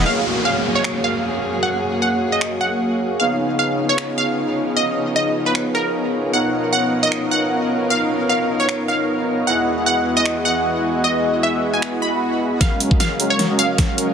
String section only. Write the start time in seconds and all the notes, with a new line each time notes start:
0.06 F#2 A#3 G#4
3.20 C#3 F3 B3 D#4
6.33 B2 C#4 D#4 A#4
9.47 E2 G#3 F#4
12.61 F#3 C#4 G#4 A#4